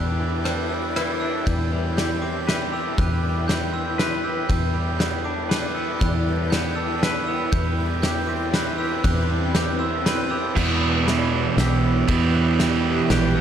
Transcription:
Already playing: E2 E3 G3 D4 E4 B4 D5 G5 F#6
0.19 E3
0.44 D4 G6, cross-stick, ride
0.69 G3 E6
0.96 E4, cross-stick, ride
1.20 D4 E6
1.46 E2 B4 G5 G6, kick, ride
1.72 G3
1.97 G4 G6, snare, ride
2.22 C4 D6
2.47 B4, snare, ride
2.72 G4 E6
2.98 E2 F#6, kick, ride
3.23 G3
3.48 G4 G6, snare, ride
3.72 C4 E6
3.98 B4, snare, ride
4.24 G4 E6
4.48 E2 E4 B4 D5 G6, kick, ride
4.73 G3
4.99 B3 G6, snare, ride
5.24 D4 D6
5.49 B4, snare, ride
5.75 B3 E6
5.99 E2 F#6, kick, ride
6.26 G3
6.50 B3 G6, snare, ride
6.75 D4 E6
7.03 B4, snare, ride
7.27 B3 E6
7.52 E2 C4 G6, kick, ride
7.79 G3
8.02 G4 G6, snare, ride
8.27 C4 D6
8.53 B4, snare, ride
8.78 G4 E6
9.04 E2 F#6, kick, ride
9.30 G3
9.55 G4 G6, snare, ride
9.79 C4 E6
10.06 B4, snare, ride
10.30 G4 E6
10.55 E2 B2 E3 E4 G4 B4 G5 G6, kick, crash
10.81 G3
11.06 E3 D6, snare, ride
11.33 B3
11.57 B1 G4 E6, snare, ride
11.84 B3
12.08 E2 B2 E3 G6, kick, ride
12.34 G3 F#6
12.59 E3 G6, snare, ride
12.85 B3
13.10 A#1 G4 F#6, snare, ride
13.35 B3 E6

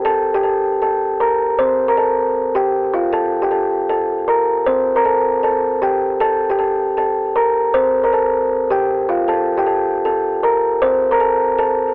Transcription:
0.05 A4 A5
0.34 G4 G5
0.43 A4 A5
0.82 A4 A5
1.20 A#4 A#5
1.59 C4 C5
1.88 A#4 A#5
1.97 A4 A5
2.55 G4 G5
2.94 F4 F5
3.13 A4 A5
3.42 G4 G5
3.51 A4 A5
3.90 A4 A5
4.28 A#4 A#5
4.66 C4 C5
4.96 A#4 A#5
5.05 A4 A5
5.43 A4 A5
5.82 G4 G5
6.20 A4 A5
6.50 G4 G5
6.59 A4 A5
6.97 A4 A5
7.36 A#4 A#5
7.74 C4 C5
8.04 A#4 A#5
8.13 A4 A5
8.71 G4 G5
9.09 F4 F5
9.28 A4 A5
9.58 G4 G5
9.67 A4 A5
10.05 A4 A5
10.43 A#4 A#5
10.82 C4 C5
11.11 A#4 A#5
11.20 A4 A5
11.59 A4 A5

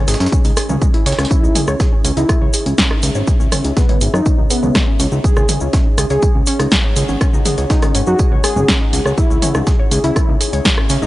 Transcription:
Already playing: C#4 G#4 D#5 G#5
0.08 G#1 G#4, snare, open hi-hat, tambourine, shaker
0.14 snare, tambourine
0.20 F#2 C#4, snare, tambourine, shaker
0.26 snare, tambourine
0.32 C#4, kick, tambourine, shaker
0.44 C#2 D#4, open hi-hat, shaker
0.57 G#4, cross-stick, open hi-hat, tambourine, shaker
0.69 C#2 C#4, mid tom, shaker
0.82 G#3, kick, tambourine, shaker
0.94 E4, closed hi-hat
1.06 C#2 C#5, snare, open hi-hat, tambourine, shaker
1.12 snare, tambourine
1.18 C#2 C#4, cross-stick, snare, tambourine, shaker
1.25 snare, tambourine
1.31 C#4 E4 C#5 E5, kick, tambourine, shaker
1.43 C#2 D#4, shaker
1.55 G#4, open hi-hat, mid tom, tambourine, shaker
1.67 C#2 C#5, cross-stick, shaker
1.80 G#4, kick, snare, tambourine, shaker
1.92 C#4
2.04 C#2 C#4, open hi-hat, tambourine, shaker
2.17 C#2 D#4 E4, closed hi-hat, shaker
2.29 G#4, kick, cross-stick, tambourine, shaker
2.41 C#2 C#5
2.53 G#4, open hi-hat, tambourine, shaker
2.66 C#2 C#4, closed hi-hat, shaker
2.78 C#4, kick, snare, tambourine, shaker
2.91 D#4, cross-stick
3.02 C#2 G#4, open hi-hat, tambourine, shaker
3.15 G#1 C#5, shaker
3.27 G#4, kick, tambourine, shaker
3.40 C#2 C#4, shaker
3.52 C#4, cross-stick, open hi-hat, mid tom, tambourine, shaker
3.64 C#2 D#4, closed hi-hat, shaker
3.77 B3 G#4, kick, snare, tambourine, shaker
3.89 C#5, closed hi-hat, mid tom
4.01 G#1 G#4, open hi-hat, tambourine, shaker
4.14 F#2 C#4 D#4, cross-stick, shaker
4.25 C#4, kick, tambourine, shaker
4.38 C#2 D#4
4.50 B3 G#4, open hi-hat, tambourine, shaker
4.63 C#2 C#5, mid tom, shaker
4.75 G#4, kick, cross-stick, snare, tambourine, shaker
4.87 C#4
5.00 C#2 C#4, snare, open hi-hat, tambourine, shaker
5.11 C#2 D#4, shaker
5.24 G#4 F#5, kick, tambourine, shaker
5.36 C#2 C#5, cross-stick, shaker
5.49 G#4, open hi-hat, mid tom, tambourine, shaker
5.60 C#2 C#4, shaker
5.73 C#4, kick, snare, tambourine, shaker
5.86 D#4
5.98 C#2 G#4, cross-stick, open hi-hat, tambourine, shaker
6.10 C#2 G#4 C#5, closed hi-hat, shaker
6.22 G#4, kick, tambourine, shaker
6.35 C#2 C#4
6.46 C#4, open hi-hat, tambourine, shaker
6.59 C#2 D#4, cross-stick, closed hi-hat, shaker
6.71 G#4, kick, snare, tambourine, shaker
6.84 C#5
6.96 C#2 G#4, open hi-hat, tambourine, shaker
7.08 G#1 C#4, shaker
7.21 C#4, kick, cross-stick, tambourine, shaker
7.33 C#2 D#4, shaker
7.45 G#4, open hi-hat, mid tom, tambourine, shaker
7.57 C#2 C#5, closed hi-hat, shaker
7.70 D#4 G#4, kick, snare, tambourine, shaker
7.82 C#4, cross-stick, closed hi-hat, mid tom, shaker
7.95 G#1 C#4, open hi-hat, tambourine, shaker
8.06 F#2 D#4 F#4, shaker
8.19 G#4, kick, tambourine, shaker
8.32 C#2 C#5
8.44 G#4, cross-stick, open hi-hat, tambourine, shaker
8.56 G#1 C#4, mid tom, shaker
8.68 C#4, kick, snare, tambourine, shaker
8.81 D#4
8.93 C#2 G#4, snare, open hi-hat, tambourine, shaker
9.06 C#2 C#5, cross-stick, shaker
9.18 E4 G#4 E5, kick, tambourine, shaker
9.30 C#2 C#4, shaker
9.42 C#4, open hi-hat, mid tom, tambourine, shaker
9.54 C#2 D#4, cross-stick, shaker
9.67 G#4, kick, snare, tambourine, shaker
9.79 C#5
9.91 C#2 G#4, open hi-hat, tambourine, shaker
10.04 C#2 C#4 E4, closed hi-hat, shaker
10.16 C#4, kick, cross-stick, tambourine, shaker
10.28 C#2 D#4
10.40 G#4, open hi-hat, tambourine, shaker
10.53 C#2 C#5, closed hi-hat, shaker
10.65 G#4, kick, snare, tambourine, shaker
10.78 C#4, cross-stick
10.89 C#2 C#4, open hi-hat, tambourine, shaker
11.02 G#1 D#4, shaker

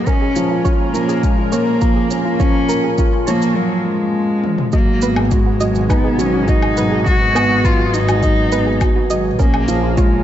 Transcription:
Already playing: G#3
0.07 A#2 C#4 A#4, kick, shaker
0.21 G#4
0.36 F3, shaker
0.50 F4
0.64 F4 C#5, kick, shaker
0.94 F3 A#3 A#4, shaker
1.09 G#4, shaker
1.24 G#3, kick, shaker
1.38 F4
1.52 A#3 C#5, shaker
1.81 F3 A#4, kick, shaker
1.96 G#4
2.11 C#4, shaker
2.25 F4
2.39 F3 C#4 C#5, kick, shaker
2.69 A#3 A#4, shaker
2.84 G#4
2.98 F4, kick, shaker
3.13 F4
3.27 F3 A#3 C#5, shaker
3.42 shaker
3.56 F#3
3.85 G#3
4.44 high tom
4.58 mid tom
4.72 G#1 B2 F#3 A#3 F#4 D#5 G#5, kick, shaker
5.02 B3 B4, shaker
5.16 G#4, low woodblock
5.31 G#3 F#4, kick, shaker
5.46 F#4
5.60 F#3 D#5, shaker
5.75 shaker
5.90 B3 D#4 B4, kick, low woodblock, shaker
6.04 G#4
6.19 F#3 C#4, shaker
6.34 F#4
6.48 D#4 F#4 D#5, kick, shaker
6.62 low woodblock
6.77 F#3 B4, shaker
6.92 G#4
7.07 F#4, kick, shaker
7.21 F#4
7.35 B3 D#5, low woodblock, shaker
7.64 F#3 F4 B4, kick, shaker
7.79 G#4
7.93 D#4, shaker
8.09 F#4, low woodblock, shaker
8.23 F#3 D#5, kick, shaker
8.52 B3 B4, shaker
8.66 G#4
8.81 F#4, kick, low woodblock, shaker
8.96 F#4
9.10 F#3 D#5, shaker
9.39 A#1 A#3 C#4 G#4 A#4 F5 A#5, kick, shaker
9.54 G#4, low woodblock
9.68 F3, shaker
9.83 F4
9.97 G#3 F4 C#5, kick, shaker

